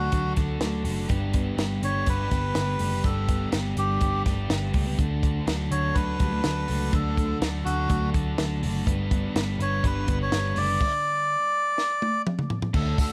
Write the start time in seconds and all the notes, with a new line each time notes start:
Already playing: D3 F#3 A3 D4 F#4 A4
0.11 D2 D3 F#3 A3 D4 F#4 A4, kick, closed hi-hat
0.35 D2 A3 D4 F#4 A4, kick, snare, closed hi-hat
0.61 D2 F#3, snare, closed hi-hat
0.84 F#1 A3 D4 F#4 A4, open hi-hat
1.08 G1 G2 D3 G3 B3 D4 G4, kick, closed hi-hat
1.33 B3, kick, closed hi-hat
1.57 G1 G3 B3 D4 G4, snare, closed hi-hat
1.82 G1 G3 B3 D4 G4 C#5, closed hi-hat
2.06 G1 G2 D3 G3 B3 D4 G4 B4, kick, closed hi-hat
2.31 G1 G3 B3 D4 G4, kick, snare, closed hi-hat
2.55 G1 G3, snare, closed hi-hat
2.79 F#1 G3 A3 B3 D4 G4, open hi-hat
2.92 B3
3.04 G1 G2 D3 G3 B3 D4 G4 A4, kick, closed hi-hat
3.29 B3, kick, closed hi-hat
3.52 G1 G3 B3 D4 G4, snare, closed hi-hat
3.77 G1 G3 B3 D4 G4, closed hi-hat
4.01 G1 G2 D3 G3 B3 D4 G4, kick, closed hi-hat
4.25 G1 G3 A3 B3 D4 G4, kick, snare, closed hi-hat
4.37 B3
4.50 G1 G3, snare, closed hi-hat
4.74 C#2 G3 A3 B3 D4 G4, kick, open hi-hat
4.87 B3
4.98 D2 D3 A3 D4 F#4 A4, kick, closed hi-hat
5.23 A3, kick, closed hi-hat
5.46 D2 F#3 A3 D4 F#4 A4, snare, closed hi-hat
5.71 D2 D4 F#4 A4 C#5, closed hi-hat
5.94 D2 D3 F#3 A3 D4 F#4 A4 B4, kick, closed hi-hat
6.18 D2 G3 D4 F#4 A4, kick, closed hi-hat
6.33 A3
6.44 D2 F#3, snare, closed hi-hat
6.68 C#2 A3 D4 F#4 A4, open hi-hat
6.93 D2 D3 A3 D4 F#4 A4, kick, closed hi-hat
7.17 A3, kick, closed hi-hat
7.41 D2 F#3 A3 D4 F#4 A4, snare, closed hi-hat
7.65 D2 D4 F#4 A4, closed hi-hat
7.88 D2 D3 F#3 A3 D4 F#4 A4, kick, closed hi-hat
8.13 D2 A3 D4 F#4 A4, kick, closed hi-hat
8.38 D2 F#3, snare, closed hi-hat
8.62 F#1 A3 D4 F#4 A4, open hi-hat
8.86 G1 G2 D3 G3 B3 D4 B4, kick, closed hi-hat
9.11 B3, kick, closed hi-hat
9.34 G1 G3 B3 D4 B4, snare, closed hi-hat
9.59 G1 G3 B3 D4 B4 C#5, closed hi-hat
9.83 G1 G2 D3 G3 B3 D4 B4, kick, closed hi-hat
10.08 G1 G3 B3 D4 B4, kick, closed hi-hat
10.22 C#5
10.32 G1 G3, snare, closed hi-hat
10.56 F#1 G3 A3 B3 D4 B4 D5, open hi-hat
10.68 B3
10.81 kick, crash
11.78 snare
12.02 high tom
12.27 mid tom
12.39 mid tom
12.50 floor tom
12.62 floor tom
12.73 D2 D3 A3 D4 F#4 A4, kick, crash
12.98 D2 A3 A4, kick, hi-hat pedal, open hi-hat, tambourine